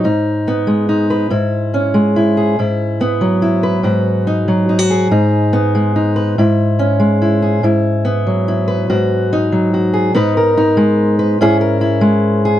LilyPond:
\new Staff \with { instrumentName = "Steel-string acoustic guitar" } { \time 3/4 \key gis \minor \tempo 4 = 142 << { dis'4 b4 dis'8 b'8 | e'4 cis'4 e'8 gis'8 | e'4 b4 e'8 b'8 | fis'4 dis'4 dis'16 fis'16 gis'8 |
dis'4 b4 dis'8 b'8 | e'4 cis'4 e'8 gis'8 | e'4 b4 e'8 b'8 | fis'4 dis'4 fis'8 gis'8 |
<b dis' b'>8 ais'8 dis'4. b'8 | <cis' e' gis'>8 ais'8 e'4. gis'8 | } \\ { gis,4. gis4. | gis,4. gis4. | gis,4. fis4. | gis,4. fis4. |
gis,4. gis4. | gis,4. gis4. | gis,4. fis4. | gis,4. fis4. |
gis,4. gis4. | gis,4. gis4. | } >> }